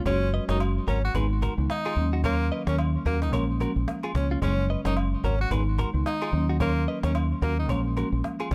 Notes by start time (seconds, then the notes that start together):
0.05 F#1 F#3 G#3 C#4 F#4 G#4 C#5, cajon bass, high agogo
0.33 B4 D#5, cajon slap
0.48 F#1 F#3 G#3 C#4 D#4 F#4 A#4 C#5, cajon slap
0.60 high agogo, low woodblock
0.76 cajon slap
0.87 G#1 C#4 F#4 A#4, cajon bass, cajon slap
1.05 F#4
1.14 G#1 D#3 G#3 B3 D#4 G#4 B4, cajon bass, high agogo
1.30 cajon slap
1.42 F#4 A#4, cajon bass, cajon slap, high agogo
1.57 C#2 D#3 G#3 B3 D#4, cajon slap
1.70 D#4, cajon slap, low woodblock
1.85 F4 G#4, cajon slap, high agogo
1.96 D#2 D#3 F#3 A#3 C#4
2.13 D#4 F#4, cajon slap
2.23 D#3 F#3 A#3 C#4 A#4 C#5, cajon bass, high agogo
2.52 B4 D#5
2.66 D#2 D#3 F#3 A#3 C#4 A#4 C#5, cajon slap
2.78 cajon slap, high agogo, low woodblock
2.94 cajon slap
3.05 D#2 D#3 F#3 A#3 C#4 F#4 A#4, cajon bass, cajon slap
3.22 D#4, cajon slap
3.32 A#1 F3 G#3 A#3 C#4 A#4 C#5, cajon bass, high agogo
3.60 F3 G#3 A#3 C#4 F#4 A#4, cajon slap, high agogo
3.76 A#1, cajon slap
3.88 cajon slap, low woodblock
4.03 F4 G#4, cajon slap, high agogo
4.14 C#2 F3 G#3 A#3 C#4, cajon bass, cajon slap
4.31 C#4 F4
4.42 F#1 C#3 F#3 G#3 C#4 G#4 C#5, cajon bass, high agogo
4.69 B4 D#5, cajon slap
4.85 F#1 C#3 F#3 G#3 C#4 D#4 A#4 C#5, cajon slap
4.97 high agogo, low woodblock
5.12 cajon slap
5.24 G#1 C#4 F#4 A#4, cajon bass, cajon slap
5.40 F#4, cajon slap
5.51 G#1 D#3 G#3 B3 D#4 G#4 B4, cajon bass, high agogo
5.78 F#4 A#4, cajon bass, cajon slap, high agogo
5.94 C#2 D#3 G#3 B3 D#4, cajon slap
6.06 D#4, cajon slap, low woodblock
6.21 F4 G#4, cajon slap, high agogo
6.32 D#2 D#3 F#3 A#3 C#4, cajon slap
6.49 D#4 F#4, cajon slap
6.60 D#3 F#3 A#3 C#4 A#4 C#5, cajon bass, high agogo
6.87 B4 D#5, cajon slap
7.03 D#2 D#3 F#3 A#3 C#4 A#4 C#5, cajon slap
7.15 high agogo, low woodblock
7.31 cajon slap
7.42 D#2 D#3 F#3 A#3 C#4 F#4 A#4, cajon bass, cajon slap
7.58 D#4, cajon slap
7.69 A#1 F3 G#3 A#3 C#4 A#4 C#5, cajon bass, high agogo
7.96 F3 G#3 A#3 C#4 F#4 A#4, cajon slap, high agogo
8.12 A#1, cajon slap
8.24 cajon slap, low woodblock
8.40 F4 G#4, cajon slap, high agogo
8.51 C#2 F3 G#3 A#3 C#4, cajon bass, cajon slap